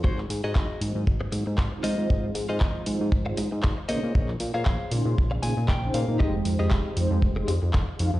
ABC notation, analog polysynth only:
X:1
M:4/4
L:1/16
Q:"Swing 16ths" 1/4=117
K:Ab
V:1 name="Analog polysynth"
z6 [E_GBc]4 [EGBc] z2 [EFAc]2 [EFAc]- | [EFAc]6 [EFAc]3 [EFAc] z4 [DEAe] z | z6 [DEAc']4 [DEAc] z2 [DEAc]2 [A,Ecg]- | [A,Ecg]6 [A,Ecg]3 [EGAc] z4 [EGAf] z |]